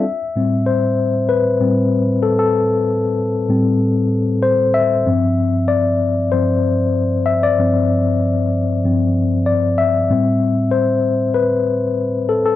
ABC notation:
X:1
M:4/4
L:1/16
Q:"Swing 16ths" 1/4=95
K:Am
V:1 name="Tine electric piano"
e4 c4 B6 A A- | A12 c2 e2- | e4 d4 c6 e d- | d12 d2 e2- |
e4 c4 B6 A A |]
V:2 name="Tine electric piano" clef=bass
z2 [A,,G,C]6 z2 [A,,G,C]2 z4 | z6 [A,,G,C]2 z8 | [G,,F,C]2 z6 [G,,F,C]2 z6 | [G,,F,C]2 z6 [G,,F,C]2 z6 |
[A,,G,C]2 z12 z2 |]